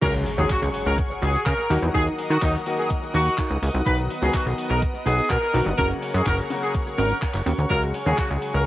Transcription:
0.02 C#2 F#3 G#3 C#4 F#4 G#4 A#4 C#5 F#5 C#6, kick, closed hi-hat, crash, impact, shaker
0.14 muted clean electric guitar stroke, shaker
0.26 muted clean electric guitar stroke, open hi-hat, shaker
0.38 D#2 F#3 G#3 C#4 F#4 G#4 C#5, shaker
0.50 F#4, muted clean electric guitar stroke, kick, clap, closed hi-hat, shaker
0.62 C#2, muted clean electric guitar stroke, shaker
0.74 open hi-hat, shaker
0.86 C#2 A#4, muted clean electric guitar stroke, shaker
0.98 kick, closed hi-hat, shaker
1.10 muted clean electric guitar stroke, shaker
1.22 C#2 F#4 G#4 C#5, open hi-hat, shaker
1.34 muted clean electric guitar stroke, shaker
1.46 C#3 A#4, kick, clap, closed hi-hat, shaker
1.58 muted clean electric guitar stroke, shaker
1.70 D#2 D#3 F#3 A#3 D#4 F#4 A#4 D#5 F#5 D#6, open hi-hat, shaker
1.82 E2, muted clean electric guitar stroke, shaker
1.94 D#2 D#4 F#4 G#4 A#4, kick, closed hi-hat, shaker
2.06 muted clean electric guitar stroke, shaker
2.18 muted clean electric guitar stroke, open hi-hat, shaker
2.30 D#3 D#4 F#4 A#4, shaker
2.42 D#2 D#3 F#3 A#3 D#4 F#4, muted clean electric guitar stroke, kick, clap, closed hi-hat, shaker
2.54 muted clean electric guitar stroke, shaker
2.66 D#3 F#3 A#3 F#4, open hi-hat, shaker
2.78 G#4, muted clean electric guitar stroke, shaker
2.90 kick, closed hi-hat, shaker
3.02 muted clean electric guitar stroke, shaker
3.14 D#2 D#4 F#4 A#4, open hi-hat, shaker
3.26 muted clean electric guitar stroke, shaker
3.38 D#4 F#4 A#4, kick, clap, closed hi-hat, shaker
3.50 C#2, muted clean electric guitar stroke, shaker
3.62 C#2, muted clean electric guitar stroke, open hi-hat, shaker
3.73 C2 D#4 F#4 A#4, shaker
3.85 B1 D#3 F#3 B3 D#4 F#4 B4 D#5, kick, closed hi-hat, shaker
3.97 muted clean electric guitar stroke, shaker
4.10 muted clean electric guitar stroke, open hi-hat, shaker
4.21 C#2 D#3 F#3 B3 D#4 F#4 G#4 B4, shaker
4.34 F#4, muted clean electric guitar stroke, kick, clap, closed hi-hat, shaker
4.46 B1, muted clean electric guitar stroke, shaker
4.58 open hi-hat, shaker
4.70 B1 A#4, muted clean electric guitar stroke, shaker
4.82 kick, closed hi-hat, shaker
4.94 muted clean electric guitar stroke, shaker
5.06 B1 D#4 F#4 G#4 B4, open hi-hat, shaker
5.18 muted clean electric guitar stroke, shaker
5.30 B2 A#4, kick, clap, closed hi-hat, shaker
5.42 muted clean electric guitar stroke, shaker
5.54 B1 D#3 F#3 B3 D#4 F#4 B4, open hi-hat, shaker
5.66 G1, muted clean electric guitar stroke, shaker
5.78 F#1 C#3 F#3 A#3 C#4 F#4 A#4 C#5 C#6, kick, closed hi-hat, shaker
5.90 muted clean electric guitar stroke, shaker
6.02 muted clean electric guitar stroke, open hi-hat, shaker
6.14 F#2 C#4 F#4 G#4 A#4, shaker
6.26 F#1 C#3 F#3 A#3 F#4 A#4, muted clean electric guitar stroke, kick, clap, closed hi-hat, shaker
6.38 muted clean electric guitar stroke, shaker
6.50 C#3 F#3 A#3 F#4, open hi-hat, shaker
6.62 G#4, muted clean electric guitar stroke, shaker
6.74 kick, closed hi-hat, shaker
6.86 muted clean electric guitar stroke, shaker
6.98 G#1 C#4 F#4 A#4, open hi-hat, shaker
7.10 muted clean electric guitar stroke, shaker
7.22 muted clean electric guitar stroke, kick, clap, closed hi-hat, shaker
7.34 F#1, muted clean electric guitar stroke, clap, shaker
7.46 D#2 C#4 F#4 A#4, open hi-hat, shaker
7.58 D2 C#4 F#4 A#4, shaker
7.70 C#2 C#3 F#3 G#3 F#4 G#4 A#4 C#5, kick, closed hi-hat, shaker
7.82 muted clean electric guitar stroke, shaker
7.94 muted clean electric guitar stroke, open hi-hat, shaker
8.06 D#2 C#3 F#3 G#3 F#4 G#4 C#5, shaker
8.18 F#4, muted clean electric guitar stroke, kick, clap, closed hi-hat, tambourine, shaker
8.30 C#2, muted clean electric guitar stroke, shaker
8.42 open hi-hat, shaker
8.54 C#2 A#4, muted clean electric guitar stroke, shaker

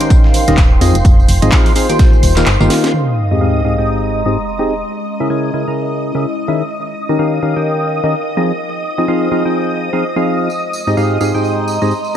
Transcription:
Already playing: D#4 A#4 C5 F5 G5 C6
0.01 D#3 C#4 D#4 G4 A#4 G5, closed hi-hat, tambourine
0.10 kick, closed hi-hat, tambourine
0.24 snare
0.34 open hi-hat, tambourine
0.47 D#1 D#3 C#4 D#4 G4 A#4 D#5, snare, closed hi-hat, tambourine
0.57 kick, snare, clap, closed hi-hat, tambourine
0.81 F2 F3 C4 D#4 F4 G#4 D#5, open hi-hat, tambourine
0.95 F1, closed hi-hat, tambourine
1.04 F1 C5, kick, closed hi-hat, tambourine
1.20 tambourine
1.28 F1 G#5, open hi-hat, tambourine
1.42 G#1 F3 C4 D#4 F4 G#4 D#5, closed hi-hat, tambourine
1.52 F3 C4 D#4 F4 G#4 F5, kick, snare, clap, closed hi-hat, tambourine
1.66 open hi-hat, tambourine
1.75 C4 D#4 F4 G#4 F5, open hi-hat, tambourine
1.90 D#3 A#3 D#4 F4 G4 G5, closed hi-hat, tambourine
1.99 D#4, kick, snare, closed hi-hat, tambourine
2.13 tambourine
2.23 D#1, open hi-hat, tambourine
2.29 A#4
2.36 D#3 A#3 D#4 F4 G4 F5, snare, clap, closed hi-hat, tambourine
2.43 G1 F5 G5, clap, closed hi-hat, tambourine
2.60 G1 D#3 A#3 D#4 F4 G4 F5, tambourine
2.70 snare, open hi-hat, tambourine
2.84 snare, closed hi-hat, tambourine
2.94 G#3 D#5 D#6, sub drop
3.03 D#5
3.31 G#2 C4 D#4 G4 G#4 D#5
3.37 G#2 C4 D#4 G4 G#4 F5 A#5
3.65 G#2 C4 D#4 G4 G#4 F5
3.78 G#2 C4 D#4 G4 G#4 G5 C6
4.26 G#2 C4 D#4 G4 G#4 D#5
4.59 C4 D#4 G4 G#4 D#5
4.83 C#4
5.20 C#3 C#4 E4 G#4 A#4 E5
5.30 C#3 C#4 E4 G#4 A#4 G#5
5.46 E4
5.54 C#3 C#4 E4 G#4 A#4 G#5
5.68 C#3 C#4 E4 G#4 A#4 A#5
6.15 C#3 C#4 E4 G#4 A#4 E5
6.48 D#3 C#4 E4 G#4 A#4 E5
6.72 D#4
7.03 A#4
7.09 D#3 C#4 D#4 G4 A#4 D#5
7.15 F5
7.19 D#3 C#4 D#4 G4 A#4 F5 G5
7.43 D#3 C#4 D#4 G4 A#4 F5
7.56 D#3 C#4 D#4 G4 A#4 G5
8.04 D#3 C#4 D#4 G4 A#4 D#5
8.37 F3 C4 D#4 F4 G#4 D#5
8.71 C5
8.98 F3 C4 D#4 F4 G#4 D#5
9.08 F3 C4 D#4 F4 G#4 F5
9.32 F3 C4 D#4 F4 G#4 F5
9.45 F3 C4 D#4 F4 G#4 G5
9.93 F3 C4 D#4 F4 G#4 F5
10.16 F3 C4 D#4 F4 G#4 F5
10.50 G#3, tambourine
10.73 D#5, tambourine
10.87 G#2 C4 D#4 G4 G#4 D#5, tambourine
10.94 G#2 C4 D#4 G4 G#4 F5 C6, tambourine
11.07 A#5
11.21 G#2 C4 D#4 G4 G#4 F5, tambourine
11.34 G#2 C4 D#4 G4 G#4 G5, tambourine
11.44 tambourine
11.68 tambourine
11.82 G#2 C4 D#4 G4 G#4 D#5, tambourine
11.91 tambourine
12.04 tambourine

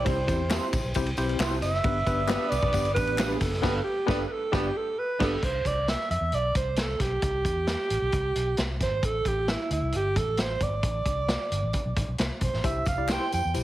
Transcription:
Already playing: G3 C4 E4 C5
0.05 C2 C4 E4 G4 C5, kick, ride, tambourine
0.27 E2 C4 E4 G4 C5, kick, ride, tambourine
0.50 C4 E4 G4 C5, snare, clap, ride, tambourine
0.73 A1, kick, ride, tambourine
0.84 B1
0.94 C2 C4 E4 G4 C5, kick, ride, tambourine
1.06 ride
1.17 B1 C4 E4 G4 C5, ride, tambourine
1.29 ride
1.39 C2 E4 G4 C5, snare, clap, ride, tambourine
1.51 C4 E4 G4 C5
1.62 F#1 E5, snare, ride, tambourine
1.74 snare
1.84 G1 G3 B3 D4 G4 B4, kick, ride
2.06 G1 B3 D4 G4 B4, kick, ride, tambourine
2.27 B3 D4 G4 B4, snare, clap, ride, tambourine
2.50 C2 D5, ride, tambourine
2.63 B1, kick
2.73 G1 B3 D4 G4 B4, kick, ride, tambourine
2.85 ride
2.94 A1 B3 D4 G4 B4, kick, ride, tambourine
3.07 ride
3.18 D4 G4 B4, snare, clap, ride, tambourine
3.28 B3 D4 G4 B4
3.35 G#4
3.40 F#1 A4, kick, snare, open hi-hat, ride, tambourine
3.53 snare
3.62 G1 G3 B3 D4 G4 B4, kick, snare, crash
3.84 G4
4.06 G1 G3 B3 D4 G4 A4 B4, kick, snare
4.28 A4 B4
4.52 G1 G3 B3 D4 G4 B4, kick, snare
4.77 A4
4.99 B4
5.19 G1 G3 B3 D4 G4 A4 B4, kick, snare, crash
5.43 C2 C5, kick, closed hi-hat
5.65 C2 D5, kick, closed hi-hat
5.88 E5, snare, closed hi-hat
6.01 snare
6.10 F2 E5, closed hi-hat
6.21 E2
6.32 B1 D5, closed hi-hat
6.55 C2 C5, kick, closed hi-hat
6.76 A4, snare, closed hi-hat
7.00 B1 G4, kick, snare, closed hi-hat
7.22 C2, kick, closed hi-hat
7.45 E2, kick, closed hi-hat
7.67 snare, closed hi-hat
7.90 A1, closed hi-hat
8.02 B1
8.12 C2, kick, closed hi-hat
8.35 B1, closed hi-hat
8.57 C2, snare, closed hi-hat
8.80 G#1 C5, kick, snare, closed hi-hat
9.03 A1 A4, kick, closed hi-hat
9.25 A1 G4, kick, closed hi-hat
9.48 E4, snare, closed hi-hat
9.71 D2 E4, closed hi-hat
9.82 C2
9.92 G1 G4, closed hi-hat
10.16 A1 A4, kick, closed hi-hat
10.37 snare, closed hi-hat
10.42 C5
10.60 G#1 D5, kick, closed hi-hat
10.83 A1, kick, closed hi-hat
11.06 C2, kick, closed hi-hat
11.28 snare, closed hi-hat
11.51 G1, closed hi-hat
11.63 A1
11.73 kick, closed hi-hat
11.85 B1
11.96 A1, kick, closed hi-hat
12.09 B1
12.18 C2, snare, closed hi-hat
12.41 B1 C5, kick, closed hi-hat
12.53 A1, snare
12.64 C2 E4 G4 C5 E5, kick, closed hi-hat, tambourine
12.86 C2 F5, kick, closed hi-hat, tambourine
12.98 E4 G4 D5
13.09 E4 G4 C5 G5, snare, clap, closed hi-hat, tambourine
13.20 E4 G4 C5, snare
13.32 F2 G5, closed hi-hat, tambourine
13.45 E2
13.54 B1 E4 G4 C5, closed hi-hat, tambourine

